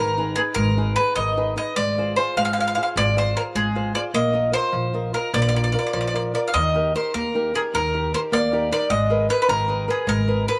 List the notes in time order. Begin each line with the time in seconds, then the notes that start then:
Already playing: G#1 D#3 A#4
0.17 D#4 G#4 B4
0.36 D#4 G#4 B4
0.55 G#1 G#3 A#4
0.77 D#4 G#4 B4
0.96 D#4 G#4 B4
1.16 G#1 D#3 D#5
1.37 D#4 G#4 B4
1.56 D#4 G#4 B4 D#5
1.76 G#1 G#3 D5
1.98 F4 G#4 C5
2.16 F4 G#4 C5
2.37 G#1 G#3 F5
2.45 F5
2.53 F5
2.58 F4 G#4 C5 F5
2.68 F5
2.75 F4 G#4 C5 F5
2.83 F5
2.96 G#1 G#3 D5
3.16 F4 G#4 C5
3.36 F4 G#4 A#4 C5
3.55 G#1 G#3 G#4
3.75 F4 G#4 C5
3.95 F4 G#4 C5 D5
4.14 A#1 A#3 D#5
4.33 F4 A#4 D#5
4.52 F4 A#4 C5 D#5
4.72 A#1 F3
4.94 F4 A#4 D#5
5.14 F4 A#4 D#5
5.34 A#1 A#3 D5
5.42 D5
5.49 D5
5.54 F4 A#4 D5
5.64 D5
5.72 F4 A#4 D5
5.79 D5
5.87 D5
5.93 A#1 F3 D5
6.01 D5
6.07 D5
6.14 F4 A#4 D5
6.34 F4 A#4 D5
6.48 F5
6.54 D#2 D#3 D#5
6.74 D#4 G4 A#4
6.94 D#4 G4 A#4 C5
7.14 D#2 A#3 A#4
7.34 D#4 G4 A#4
7.54 D#4 G4 G#4 A#4
7.74 D#2 D#3 A#4
7.94 D#4 G4 A#4
8.14 D#4 G4 A#4 C5
8.32 D#2 A#3 D5
8.52 D#4 G4 A#4
8.71 D#4 G4 A#4 D5
8.90 G#1 G#3 D#5
9.10 G#4 A#4 B4
9.29 G#4 A#4 B4
9.42 B4
9.49 G#1 D#3 A#4
9.68 G#4 A#4 B4
9.88 G#4 A#4 B4
10.07 G#1 G#3 A#4
10.28 G#4 A#4 B4
10.48 G#4 A#4 B4